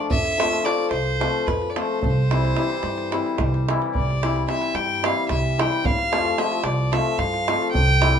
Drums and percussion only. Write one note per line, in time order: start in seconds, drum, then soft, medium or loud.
0.10 davul low medium
0.25 davul high soft
0.40 davul high medium
0.53 davul high soft
0.66 davul high medium
0.78 davul high soft
0.91 davul high soft
1.21 davul high medium
1.48 davul high medium
1.48 davul low soft
1.62 davul high soft
1.76 davul high medium
2.02 davul low medium
2.31 davul high medium
2.45 davul high soft
2.56 davul high medium
2.70 davul high soft
2.83 davul high soft
2.98 davul high soft
3.12 davul high medium
3.26 davul high soft
3.38 davul high medium
3.38 davul low medium
3.54 davul high soft
3.69 davul high medium
3.82 davul high soft
3.95 davul low medium
4.10 davul high soft
4.23 davul high medium
4.36 davul high soft
4.49 davul high medium
4.62 davul high soft
4.75 davul high soft
5.04 davul high medium
5.29 davul high medium
5.29 davul low medium
5.59 davul high medium
5.72 davul high soft
5.85 davul low medium
5.98 davul high soft
6.13 davul high medium
6.25 davul high soft
6.38 davul high medium
6.52 davul high soft
6.64 davul high medium
6.93 davul high medium
7.19 davul high soft
7.19 davul low soft
7.34 davul high soft
7.48 davul high medium
7.62 davul high soft
7.75 davul low medium
7.89 davul high soft
8.02 davul high medium
8.15 davul high soft